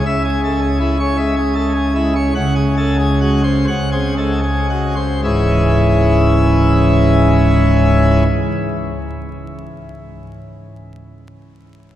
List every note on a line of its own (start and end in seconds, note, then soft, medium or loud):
0.05 2.31 C#2 medium
0.05 2.31 C#3 medium
0.05 0.22 E5 loud
0.25 0.41 G#4 medium
0.44 0.60 G#3 medium
0.44 0.59 A4 medium
0.62 0.78 G#4 medium
0.80 0.97 G#3 medium
0.80 0.97 E4 medium
1.00 1.16 C#5 medium
1.17 1.35 G#3 medium
1.17 1.35 E5 medium
1.36 1.54 G#4 medium
1.55 1.73 G#3 medium
1.55 1.72 A4 medium
1.75 1.93 G#4 medium
1.95 2.13 G#3 medium
1.95 2.13 E4 medium
2.15 2.33 C#5 medium
2.35 3.66 C#2 loud
2.35 3.66 C#3 loud
2.35 2.54 F#5 loud
2.55 2.75 G#4 medium
2.77 2.96 G#3 medium
2.77 2.96 A4 medium
2.99 3.18 G#4 loud
3.20 3.41 G#3 medium
3.20 3.41 F#4 loud
3.44 3.65 C5 loud
3.68 5.21 C#2 loud
3.68 5.21 C#3 loud
3.68 3.89 F#5 loud
3.92 4.14 C4 medium
3.92 4.14 G#4 medium
4.18 4.40 G#3 medium
4.18 4.39 A4 medium
4.43 4.67 G#4 medium
4.69 4.94 G#3 medium
4.69 4.94 F#4 medium
4.96 5.20 C5 medium
5.24 8.22 C#1 medium
5.24 8.22 C#2 medium
5.24 8.22 G#2 medium
5.24 8.22 E3 medium
5.24 8.23 G#3 medium
5.24 8.23 C#4 medium
5.24 8.23 E4 medium